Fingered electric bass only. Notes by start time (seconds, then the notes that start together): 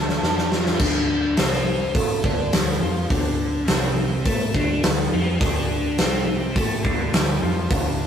Already playing: D2
0.22 F2
0.80 D2
1.37 C2
1.95 A2
2.24 D2
2.53 D2
2.82 F2
3.11 D2
3.68 C2
4.26 A2
4.54 D2
4.83 D2
5.13 F2
5.41 D2
5.98 C2
6.56 A2
6.84 D2
7.13 D2
7.42 F2
7.71 D2